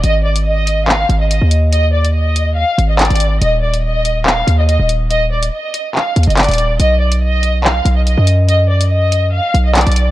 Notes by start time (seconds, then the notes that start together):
0.04 G#1 D#5, closed hi-hat
0.25 D5
0.36 closed hi-hat
0.46 D#5
0.67 closed hi-hat
0.88 F5, clap
1.09 G#1, closed hi-hat
1.20 D#5
1.30 D#5, closed hi-hat
1.42 D#2
1.51 closed hi-hat
1.72 D#5, closed hi-hat
1.94 D5
2.05 closed hi-hat
2.15 D#5
2.36 closed hi-hat
2.57 F5
2.78 G#1, closed hi-hat
2.89 D#5
2.99 D5, clap, closed hi-hat
3.05 closed hi-hat
3.10 G#1, closed hi-hat
3.15 closed hi-hat
3.20 closed hi-hat
3.42 D#1 D#5, closed hi-hat
3.63 D5
3.74 closed hi-hat
3.84 D#5
4.05 closed hi-hat
4.26 F5, clap
4.47 D#2, closed hi-hat
4.58 D#5
4.68 D#5, closed hi-hat
4.79 D#1
4.89 closed hi-hat
5.10 D#5, closed hi-hat
5.32 D5
5.43 closed hi-hat
5.53 D#5
5.74 closed hi-hat
5.95 F5, clap
6.16 D#2, closed hi-hat
6.23 closed hi-hat
6.27 F#1 D#5, closed hi-hat
6.37 D5, clap, closed hi-hat
6.43 closed hi-hat
6.49 D#1, closed hi-hat
6.51 closed hi-hat
6.53 closed hi-hat
6.58 closed hi-hat
6.80 B1 D#5, closed hi-hat
7.01 D5
7.12 closed hi-hat
7.22 D#5
7.43 closed hi-hat
7.64 F5, clap
7.85 B1, closed hi-hat
7.96 D#5
8.07 D#5, closed hi-hat
8.18 F#2
8.27 closed hi-hat
8.49 D#5, closed hi-hat
8.70 D5
8.81 closed hi-hat
8.91 D#5
9.12 closed hi-hat
9.33 F5
9.54 B1, closed hi-hat
9.65 D#5
9.75 D5, clap, closed hi-hat
9.81 closed hi-hat
9.87 B1, closed hi-hat
9.92 closed hi-hat
9.96 closed hi-hat